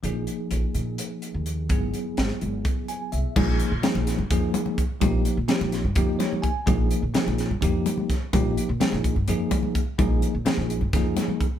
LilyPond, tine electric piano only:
\new Staff \with { instrumentName = "Tine electric piano" } { \time 7/8 \key aes \major \tempo 4 = 127 << { r2. r8 | r2 r8 aes''8 e''8 | r2. r8 | r2 r8 des''8 aes''8 |
r2. r8 | r2. r8 | r2. r8 | } \\ { <f bes ees' aes'>2.~ <f bes ees' aes'>8 | <ges b e' aes'>2.~ <ges b e' aes'>8 | <f bes ees' aes'>8. r16 <f bes ees' aes'>8. r16 <f bes ees' aes'>4 r8 | <f bes ees' g'>8. r16 <f bes ees' g'>8. r16 <f bes ees' g'>4 r8 |
<f bes ees' aes'>8. r16 <f bes ees' aes'>8. r16 <f bes ees' g'>4 r8 | <f bes ees' g'>8. r16 <f bes ees' aes'>8. r16 <f bes ees' aes'>4 r8 | <f bes ees' aes'>8. r16 <f bes ees' aes'>8. r16 <f bes ees' aes'>4 r8 | } >> }